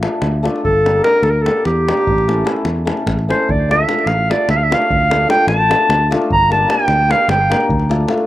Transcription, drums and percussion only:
0, 0, Header, 1, 2, 480
1, 0, Start_track
1, 0, Key_signature, -1, "minor"
1, 0, Tempo, 407056
1, 758, Time_signature, 7, 3, 24, 8
1, 4594, Tempo, 400802
1, 9828, End_track
2, 0, Start_track
2, 0, Title_t, "Davul"
2, 32, Note_on_c, 9, 37, 78
2, 150, Note_off_c, 9, 37, 0
2, 256, Note_on_c, 9, 37, 69
2, 374, Note_off_c, 9, 37, 0
2, 536, Note_on_c, 9, 37, 62
2, 654, Note_off_c, 9, 37, 0
2, 657, Note_on_c, 9, 37, 29
2, 763, Note_on_c, 9, 43, 64
2, 775, Note_off_c, 9, 37, 0
2, 881, Note_off_c, 9, 43, 0
2, 1016, Note_on_c, 9, 37, 61
2, 1134, Note_off_c, 9, 37, 0
2, 1230, Note_on_c, 9, 37, 69
2, 1335, Note_off_c, 9, 37, 0
2, 1335, Note_on_c, 9, 37, 20
2, 1452, Note_off_c, 9, 37, 0
2, 1452, Note_on_c, 9, 37, 55
2, 1570, Note_off_c, 9, 37, 0
2, 1724, Note_on_c, 9, 37, 70
2, 1842, Note_off_c, 9, 37, 0
2, 1950, Note_on_c, 9, 37, 60
2, 2068, Note_off_c, 9, 37, 0
2, 2223, Note_on_c, 9, 37, 75
2, 2327, Note_off_c, 9, 37, 0
2, 2327, Note_on_c, 9, 37, 26
2, 2442, Note_on_c, 9, 43, 80
2, 2445, Note_off_c, 9, 37, 0
2, 2560, Note_off_c, 9, 43, 0
2, 2573, Note_on_c, 9, 37, 28
2, 2691, Note_off_c, 9, 37, 0
2, 2699, Note_on_c, 9, 37, 60
2, 2817, Note_off_c, 9, 37, 0
2, 2910, Note_on_c, 9, 37, 74
2, 3024, Note_off_c, 9, 37, 0
2, 3024, Note_on_c, 9, 37, 24
2, 3125, Note_off_c, 9, 37, 0
2, 3125, Note_on_c, 9, 37, 64
2, 3243, Note_off_c, 9, 37, 0
2, 3388, Note_on_c, 9, 37, 74
2, 3504, Note_off_c, 9, 37, 0
2, 3504, Note_on_c, 9, 37, 27
2, 3622, Note_off_c, 9, 37, 0
2, 3622, Note_on_c, 9, 37, 70
2, 3622, Note_on_c, 9, 43, 64
2, 3740, Note_off_c, 9, 37, 0
2, 3740, Note_off_c, 9, 43, 0
2, 3759, Note_on_c, 9, 37, 29
2, 3877, Note_off_c, 9, 37, 0
2, 3897, Note_on_c, 9, 37, 68
2, 4015, Note_off_c, 9, 37, 0
2, 4118, Note_on_c, 9, 43, 78
2, 4236, Note_off_c, 9, 43, 0
2, 4375, Note_on_c, 9, 37, 66
2, 4493, Note_off_c, 9, 37, 0
2, 4583, Note_on_c, 9, 37, 75
2, 4703, Note_off_c, 9, 37, 0
2, 4703, Note_on_c, 9, 37, 30
2, 4805, Note_off_c, 9, 37, 0
2, 4805, Note_on_c, 9, 37, 64
2, 4925, Note_off_c, 9, 37, 0
2, 5089, Note_on_c, 9, 37, 76
2, 5209, Note_off_c, 9, 37, 0
2, 5303, Note_on_c, 9, 37, 67
2, 5422, Note_off_c, 9, 37, 0
2, 5583, Note_on_c, 9, 37, 87
2, 5697, Note_off_c, 9, 37, 0
2, 5697, Note_on_c, 9, 37, 33
2, 5801, Note_on_c, 9, 43, 81
2, 5816, Note_off_c, 9, 37, 0
2, 5921, Note_off_c, 9, 43, 0
2, 6052, Note_on_c, 9, 37, 88
2, 6172, Note_off_c, 9, 37, 0
2, 6274, Note_on_c, 9, 37, 77
2, 6378, Note_off_c, 9, 37, 0
2, 6378, Note_on_c, 9, 37, 25
2, 6492, Note_off_c, 9, 37, 0
2, 6492, Note_on_c, 9, 37, 69
2, 6612, Note_off_c, 9, 37, 0
2, 6765, Note_on_c, 9, 37, 81
2, 6885, Note_off_c, 9, 37, 0
2, 6993, Note_on_c, 9, 37, 81
2, 7113, Note_off_c, 9, 37, 0
2, 7260, Note_on_c, 9, 37, 74
2, 7374, Note_off_c, 9, 37, 0
2, 7374, Note_on_c, 9, 37, 28
2, 7491, Note_on_c, 9, 43, 75
2, 7494, Note_off_c, 9, 37, 0
2, 7610, Note_off_c, 9, 43, 0
2, 7733, Note_on_c, 9, 37, 61
2, 7853, Note_off_c, 9, 37, 0
2, 7951, Note_on_c, 9, 37, 68
2, 8067, Note_off_c, 9, 37, 0
2, 8067, Note_on_c, 9, 37, 22
2, 8167, Note_off_c, 9, 37, 0
2, 8167, Note_on_c, 9, 37, 67
2, 8287, Note_off_c, 9, 37, 0
2, 8439, Note_on_c, 9, 37, 73
2, 8559, Note_off_c, 9, 37, 0
2, 8660, Note_on_c, 9, 37, 79
2, 8780, Note_off_c, 9, 37, 0
2, 8929, Note_on_c, 9, 37, 85
2, 9035, Note_off_c, 9, 37, 0
2, 9035, Note_on_c, 9, 37, 28
2, 9140, Note_on_c, 9, 43, 66
2, 9155, Note_off_c, 9, 37, 0
2, 9260, Note_off_c, 9, 43, 0
2, 9264, Note_on_c, 9, 37, 26
2, 9384, Note_off_c, 9, 37, 0
2, 9400, Note_on_c, 9, 37, 60
2, 9515, Note_off_c, 9, 37, 0
2, 9515, Note_on_c, 9, 37, 17
2, 9611, Note_off_c, 9, 37, 0
2, 9611, Note_on_c, 9, 37, 70
2, 9720, Note_off_c, 9, 37, 0
2, 9720, Note_on_c, 9, 37, 25
2, 9828, Note_off_c, 9, 37, 0
2, 9828, End_track
0, 0, End_of_file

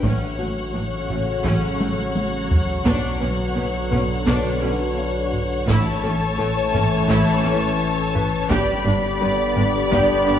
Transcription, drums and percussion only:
0, 0, Header, 1, 2, 480
1, 0, Start_track
1, 0, Key_signature, 2, "minor"
1, 0, Tempo, 705882
1, 24, Time_signature, 4, 2, 24, 8
1, 7067, End_track
2, 0, Start_track
2, 0, Title_t, "Taiko and cinematic ensemble drums"
2, 21, Note_on_c, 9, 41, 91
2, 89, Note_off_c, 9, 41, 0
2, 743, Note_on_c, 9, 45, 51
2, 811, Note_off_c, 9, 45, 0
2, 981, Note_on_c, 9, 41, 87
2, 1049, Note_off_c, 9, 41, 0
2, 1225, Note_on_c, 9, 48, 87
2, 1293, Note_off_c, 9, 48, 0
2, 1465, Note_on_c, 9, 48, 100
2, 1533, Note_off_c, 9, 48, 0
2, 1706, Note_on_c, 9, 43, 90
2, 1774, Note_off_c, 9, 43, 0
2, 1946, Note_on_c, 9, 41, 103
2, 2014, Note_off_c, 9, 41, 0
2, 2666, Note_on_c, 9, 45, 53
2, 2734, Note_off_c, 9, 45, 0
2, 2906, Note_on_c, 9, 41, 90
2, 2974, Note_off_c, 9, 41, 0
2, 3625, Note_on_c, 9, 45, 53
2, 3693, Note_off_c, 9, 45, 0
2, 3864, Note_on_c, 9, 41, 94
2, 3932, Note_off_c, 9, 41, 0
2, 4586, Note_on_c, 9, 45, 63
2, 4654, Note_off_c, 9, 45, 0
2, 4826, Note_on_c, 9, 41, 84
2, 4894, Note_off_c, 9, 41, 0
2, 5546, Note_on_c, 9, 45, 59
2, 5614, Note_off_c, 9, 45, 0
2, 5783, Note_on_c, 9, 41, 107
2, 5851, Note_off_c, 9, 41, 0
2, 6503, Note_on_c, 9, 45, 64
2, 6571, Note_off_c, 9, 45, 0
2, 6741, Note_on_c, 9, 41, 85
2, 6809, Note_off_c, 9, 41, 0
2, 7067, End_track
0, 0, End_of_file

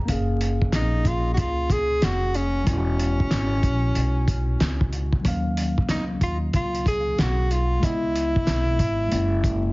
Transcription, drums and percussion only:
0, 0, Header, 1, 2, 480
1, 0, Start_track
1, 0, Tempo, 645161
1, 65, Time_signature, 4, 2, 24, 8
1, 7237, End_track
2, 0, Start_track
2, 0, Title_t, "Drums"
2, 62, Note_on_c, 9, 42, 92
2, 63, Note_on_c, 9, 36, 95
2, 137, Note_off_c, 9, 42, 0
2, 138, Note_off_c, 9, 36, 0
2, 304, Note_on_c, 9, 42, 76
2, 378, Note_off_c, 9, 42, 0
2, 458, Note_on_c, 9, 36, 87
2, 533, Note_off_c, 9, 36, 0
2, 539, Note_on_c, 9, 38, 111
2, 542, Note_on_c, 9, 42, 92
2, 613, Note_off_c, 9, 38, 0
2, 616, Note_off_c, 9, 42, 0
2, 781, Note_on_c, 9, 36, 73
2, 781, Note_on_c, 9, 42, 61
2, 855, Note_off_c, 9, 36, 0
2, 855, Note_off_c, 9, 42, 0
2, 1020, Note_on_c, 9, 42, 77
2, 1024, Note_on_c, 9, 36, 92
2, 1095, Note_off_c, 9, 42, 0
2, 1098, Note_off_c, 9, 36, 0
2, 1262, Note_on_c, 9, 36, 90
2, 1265, Note_on_c, 9, 42, 68
2, 1337, Note_off_c, 9, 36, 0
2, 1340, Note_off_c, 9, 42, 0
2, 1503, Note_on_c, 9, 42, 77
2, 1505, Note_on_c, 9, 38, 99
2, 1578, Note_off_c, 9, 42, 0
2, 1579, Note_off_c, 9, 38, 0
2, 1744, Note_on_c, 9, 42, 51
2, 1819, Note_off_c, 9, 42, 0
2, 1984, Note_on_c, 9, 42, 83
2, 1985, Note_on_c, 9, 36, 98
2, 2059, Note_off_c, 9, 36, 0
2, 2059, Note_off_c, 9, 42, 0
2, 2228, Note_on_c, 9, 42, 76
2, 2303, Note_off_c, 9, 42, 0
2, 2381, Note_on_c, 9, 36, 84
2, 2455, Note_off_c, 9, 36, 0
2, 2461, Note_on_c, 9, 38, 109
2, 2464, Note_on_c, 9, 42, 87
2, 2535, Note_off_c, 9, 38, 0
2, 2538, Note_off_c, 9, 42, 0
2, 2701, Note_on_c, 9, 36, 71
2, 2703, Note_on_c, 9, 42, 65
2, 2776, Note_off_c, 9, 36, 0
2, 2777, Note_off_c, 9, 42, 0
2, 2941, Note_on_c, 9, 42, 74
2, 3016, Note_off_c, 9, 42, 0
2, 3182, Note_on_c, 9, 36, 85
2, 3185, Note_on_c, 9, 42, 63
2, 3256, Note_off_c, 9, 36, 0
2, 3259, Note_off_c, 9, 42, 0
2, 3424, Note_on_c, 9, 42, 76
2, 3426, Note_on_c, 9, 38, 101
2, 3499, Note_off_c, 9, 42, 0
2, 3500, Note_off_c, 9, 38, 0
2, 3577, Note_on_c, 9, 36, 88
2, 3652, Note_off_c, 9, 36, 0
2, 3664, Note_on_c, 9, 42, 50
2, 3739, Note_off_c, 9, 42, 0
2, 3813, Note_on_c, 9, 36, 86
2, 3887, Note_off_c, 9, 36, 0
2, 3904, Note_on_c, 9, 36, 100
2, 3904, Note_on_c, 9, 42, 84
2, 3978, Note_off_c, 9, 42, 0
2, 3979, Note_off_c, 9, 36, 0
2, 4146, Note_on_c, 9, 42, 77
2, 4220, Note_off_c, 9, 42, 0
2, 4300, Note_on_c, 9, 36, 85
2, 4374, Note_off_c, 9, 36, 0
2, 4379, Note_on_c, 9, 38, 105
2, 4382, Note_on_c, 9, 42, 87
2, 4454, Note_off_c, 9, 38, 0
2, 4457, Note_off_c, 9, 42, 0
2, 4621, Note_on_c, 9, 36, 72
2, 4622, Note_on_c, 9, 42, 63
2, 4695, Note_off_c, 9, 36, 0
2, 4696, Note_off_c, 9, 42, 0
2, 4861, Note_on_c, 9, 42, 74
2, 4864, Note_on_c, 9, 36, 91
2, 4936, Note_off_c, 9, 42, 0
2, 4938, Note_off_c, 9, 36, 0
2, 5019, Note_on_c, 9, 42, 45
2, 5093, Note_off_c, 9, 42, 0
2, 5103, Note_on_c, 9, 36, 87
2, 5108, Note_on_c, 9, 42, 71
2, 5177, Note_off_c, 9, 36, 0
2, 5183, Note_off_c, 9, 42, 0
2, 5346, Note_on_c, 9, 42, 77
2, 5348, Note_on_c, 9, 38, 96
2, 5420, Note_off_c, 9, 42, 0
2, 5422, Note_off_c, 9, 38, 0
2, 5586, Note_on_c, 9, 42, 51
2, 5660, Note_off_c, 9, 42, 0
2, 5824, Note_on_c, 9, 36, 98
2, 5825, Note_on_c, 9, 42, 87
2, 5899, Note_off_c, 9, 36, 0
2, 5899, Note_off_c, 9, 42, 0
2, 6067, Note_on_c, 9, 42, 77
2, 6142, Note_off_c, 9, 42, 0
2, 6219, Note_on_c, 9, 36, 86
2, 6294, Note_off_c, 9, 36, 0
2, 6300, Note_on_c, 9, 38, 113
2, 6303, Note_on_c, 9, 42, 93
2, 6374, Note_off_c, 9, 38, 0
2, 6377, Note_off_c, 9, 42, 0
2, 6540, Note_on_c, 9, 36, 75
2, 6541, Note_on_c, 9, 42, 65
2, 6615, Note_off_c, 9, 36, 0
2, 6616, Note_off_c, 9, 42, 0
2, 6782, Note_on_c, 9, 42, 77
2, 6856, Note_off_c, 9, 42, 0
2, 7022, Note_on_c, 9, 36, 93
2, 7026, Note_on_c, 9, 42, 68
2, 7096, Note_off_c, 9, 36, 0
2, 7100, Note_off_c, 9, 42, 0
2, 7237, End_track
0, 0, End_of_file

